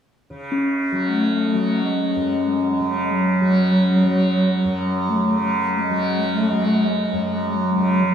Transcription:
0.30 2.79 C#3 soft
0.52 8.14 C#4 medium
0.92 1.54 F#3 soft
1.08 1.84 A3 medium
1.54 3.41 F#3 soft
1.83 3.12 G#3 medium
2.16 4.64 F#2 soft
2.80 5.27 C#3 soft
3.11 5.11 F#3 medium
3.41 4.04 F#3 soft
4.04 5.90 F#3 soft
4.64 7.12 F#2 medium
5.09 5.48 A3 medium
5.28 7.74 C#3 soft
5.77 6.37 G#3 medium
5.90 6.51 F#3 soft
6.37 6.49 A3 medium
6.49 8.14 F#3 soft
6.49 6.69 G#3 medium
6.69 6.82 A3 medium
6.82 7.44 G#3 medium
7.12 8.14 F#2 soft
7.44 7.55 G#3 soft
7.54 8.14 F#3 medium
7.75 8.14 C#3 soft
8.03 8.14 F#3 soft

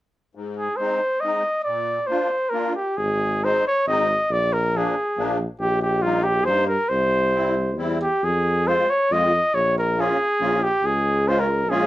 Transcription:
0.35 0.68 G#2 medium
0.57 0.78 G#4 medium
0.77 0.99 G#3 soft
0.77 1.00 C4 soft
0.77 1.22 C5 medium
0.81 1.00 D#4 medium
1.20 1.43 G#3 soft
1.20 1.43 C4 soft
1.20 1.43 D#4 soft
1.20 1.63 D#5 medium
1.64 1.99 A#2 medium
1.64 2.09 D5 medium
2.07 2.29 A#3 soft
2.07 2.30 D4 soft
2.07 2.30 F4 medium
2.07 2.51 C5 medium
2.50 2.73 A#3 medium
2.50 2.73 D4 soft
2.50 2.74 F4 medium
2.50 2.74 A#4 medium
2.76 2.99 G4 medium
2.97 3.55 G#1 medium
2.97 3.46 G#4 medium
3.43 3.63 G#3 medium
3.43 3.63 C4 soft
3.43 3.63 D#4 medium
3.43 3.66 C5 medium
3.68 3.87 C#5 medium
3.87 4.15 G#1 medium
3.87 4.07 G#3 soft
3.87 4.08 C4 soft
3.87 4.08 D#4 medium
3.87 4.34 D#5 medium
4.30 4.87 A#1 medium
4.30 4.55 D5 medium
4.53 4.78 A#4 medium
4.75 4.94 F3 medium
4.75 4.95 A#3 soft
4.75 4.95 D4 medium
4.75 5.41 G#4 medium
5.17 5.46 A#1 medium
5.17 5.37 F3 medium
5.17 5.38 A#3 soft
5.17 5.38 D4 medium
5.60 6.50 A#1 medium
5.60 5.81 G4 medium
5.82 6.04 G4 medium
6.02 6.23 G3 medium
6.02 6.24 A#3 medium
6.02 6.24 D#4 medium
6.02 6.25 F4 medium
6.24 6.47 G4 medium
6.45 6.76 G2 medium
6.45 6.67 G3 medium
6.45 6.67 A#3 soft
6.45 6.67 D#4 medium
6.45 6.67 C5 loud
6.68 6.91 A#4 medium
6.89 7.79 C2 medium
6.89 7.77 C5 medium
7.34 7.54 G3 medium
7.34 7.54 C4 soft
7.34 7.55 E4 medium
7.77 8.07 E2 medium
7.77 7.98 G3 medium
7.77 7.99 C4 medium
7.77 7.99 E4 medium
8.02 8.26 G4 medium
8.23 8.80 F2 medium
8.23 8.69 G#4 medium
8.66 8.87 G#3 medium
8.66 8.87 C4 soft
8.66 8.87 F4 medium
8.66 8.92 C5 medium
8.90 9.14 C#5 medium
9.11 9.39 F2 medium
9.11 9.30 G#3 soft
9.11 9.31 C4 medium
9.11 9.31 F4 medium
9.11 9.56 D#5 medium
9.55 10.11 A#1 medium
9.55 9.76 C#5 medium
9.78 10.02 A#4 medium
9.97 10.17 A#3 soft
9.97 10.17 C#4 soft
9.97 10.17 F4 medium
9.97 10.65 G#4 medium
10.40 10.69 A#1 medium
10.40 10.60 A#3 medium
10.40 10.61 C#4 soft
10.40 10.61 F4 medium
10.63 10.87 G4 medium
10.83 11.70 C#2 medium
10.83 11.30 G#4 medium
11.27 11.46 G#3 medium
11.27 11.46 C#4 medium
11.27 11.47 F4 medium
11.27 11.41 C5 medium
11.40 11.71 A#4 medium
11.68 11.87 A#1 medium
11.68 11.87 G#3 medium
11.68 11.87 C#4 medium
11.68 11.87 F4 medium
11.68 11.87 G#4 medium

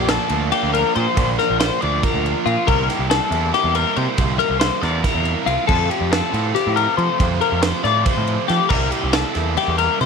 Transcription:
0.00 0.17 A#1 loud
0.00 0.32 A#2 medium
0.00 0.32 F3 loud
0.00 0.30 A#3 loud
0.00 1.17 A#3 medium
0.00 0.28 D4 loud
0.09 0.52 A4 medium
0.09 snare loud
0.09 ride loud
0.29 0.50 D2 loud
0.29 1.13 A#2 medium
0.29 1.15 F3 medium
0.29 1.17 A#3 medium
0.29 1.18 D4 medium
0.29 ride medium
0.52 0.73 G4 medium
0.52 ride loud
0.63 0.82 D2 medium
0.73 0.95 A#4 medium
0.73 ride medium
0.95 1.05 A#2 medium
0.95 1.38 C5 medium
0.95 ride medium
1.14 1.36 A#1 loud
1.14 1.78 A#2 loud
1.14 1.80 F3 medium
1.14 1.82 A#3 loud
1.14 kick loud
1.14 ride loud
1.19 1.83 D4 loud
1.39 1.59 A#4 medium
1.39 snare soft
1.39 ride medium
1.50 1.69 A#1 loud
1.60 1.81 C5 medium
1.60 snare loud
1.60 ride loud
1.80 2.02 D2 loud
1.80 2.65 A#2 medium
1.80 2.66 F3 medium
1.80 2.67 A#3 medium
1.80 2.69 D4 medium
1.80 2.03 D5 medium
1.80 ride medium
2.03 2.46 A#4 medium
2.03 kick loud
2.03 ride medium
2.14 2.33 D2 medium
2.26 ride medium
2.46 2.56 A#2 medium
2.46 2.67 F4 medium
2.46 ride medium
2.65 2.87 C2 loud
2.65 3.35 C3 medium
2.65 3.34 G3 loud
2.65 3.33 A#3 loud
2.65 3.31 E4 loud
2.65 2.89 A#4 loud
2.65 kick loud
2.65 crash loud
2.89 3.10 G4 medium
2.89 snare soft
2.89 ride medium
2.99 3.19 C2 loud
3.10 3.53 A4 medium
3.10 snare loud
3.10 ride loud
3.31 3.51 E2 loud
3.31 4.18 G3 medium
3.31 4.17 A#3 medium
3.31 4.20 E4 medium
3.31 ride medium
3.35 4.16 C3 medium
3.54 3.75 G4 medium
3.54 snare soft
3.54 ride loud
3.64 3.83 E2 medium
3.75 3.97 A#4 medium
3.75 ride medium
3.96 4.06 C3 loud
3.96 4.39 C5 medium
3.96 ride medium
4.17 4.37 C2 loud
4.17 4.80 C3 medium
4.17 4.82 G3 loud
4.17 4.82 A#3 loud
4.17 4.85 E4 loud
4.17 kick loud
4.17 ride loud
4.39 4.59 A#4 medium
4.39 ride medium
4.50 4.69 C2 medium
4.60 4.82 C5 medium
4.60 snare loud
4.60 ride loud
4.81 5.02 E2 loud
4.81 5.66 C3 medium
4.81 5.68 G3 medium
4.81 5.68 A#3 medium
4.81 5.69 E4 medium
4.81 5.04 D5 medium
4.81 snare soft
4.81 ride medium
5.04 5.47 A#4 loud
5.04 kick loud
5.04 snare soft
5.04 ride loud
5.14 5.34 E2 medium
5.25 ride medium
5.46 5.56 C2 medium
5.46 5.67 F4 medium
5.46 ride medium
5.66 6.35 F2 medium
5.66 5.88 F2 loud
5.66 6.31 C3 loud
5.66 6.33 F3 loud
5.66 6.33 A3 loud
5.66 6.32 C4 medium
5.66 6.31 F4 loud
5.66 5.90 A4 medium
5.66 kick loud
5.66 crash loud
5.90 6.12 G4 medium
5.90 ride medium
6.01 6.20 F2 medium
6.12 6.54 A4 medium
6.12 snare loud
6.12 ride loud
6.32 6.53 A2 loud
6.32 7.17 C3 medium
6.32 7.18 F3 medium
6.32 7.18 A3 medium
6.32 7.20 C4 medium
6.32 7.17 F4 medium
6.32 ride medium
6.36 7.17 F2 medium
6.55 6.76 G4 medium
6.55 snare soft
6.55 ride loud
6.67 6.86 A2 loud
6.76 6.97 A#4 medium
6.76 ride medium
6.97 7.08 F3 loud
6.97 7.41 C5 medium
6.97 ride medium
7.18 7.81 F2 medium
7.18 7.39 F2 loud
7.18 7.82 C3 loud
7.18 7.82 F3 loud
7.18 7.83 A3 medium
7.18 7.85 C4 loud
7.18 7.84 F4 loud
7.18 kick loud
7.18 ride loud
7.41 7.62 A#4 medium
7.41 ride medium
7.52 7.71 F2 medium
7.62 7.84 C5 medium
7.62 snare loud
7.62 ride loud
7.82 8.68 F2 medium
7.82 8.04 A2 loud
7.82 8.68 C3 medium
7.82 8.69 F3 medium
7.82 8.70 A3 medium
7.82 8.72 C4 medium
7.82 8.70 F4 medium
7.82 8.05 D5 medium
7.82 snare soft
7.82 ride medium
8.05 8.48 C5 medium
8.05 kick loud
8.05 ride loud
8.17 8.37 A2 medium
8.27 ride medium
8.48 8.59 F3 medium
8.48 8.69 G4 medium
8.48 snare soft
8.48 ride medium
8.69 8.90 C2 loud
8.69 9.37 C3 loud
8.69 9.37 G3 loud
8.69 9.35 A#3 loud
8.69 9.34 E4 loud
8.69 8.91 A#4 medium
8.69 kick loud
8.69 crash loud
8.91 9.13 G4 medium
8.91 ride medium
9.04 9.23 C2 loud
9.13 9.57 A4 medium
9.13 snare loud
9.13 ride loud
9.35 9.55 E2 medium
9.35 10.06 C3 medium
9.35 10.06 G3 medium
9.35 10.06 A#3 medium
9.35 10.06 E4 medium
9.35 snare soft
9.35 ride medium
9.57 9.78 G4 medium
9.57 ride loud
9.68 9.87 E2 medium
9.78 10.00 A#4 medium
9.78 ride medium
10.01 10.06 C3 loud
10.01 10.06 C5 medium
10.01 snare soft
10.01 ride medium

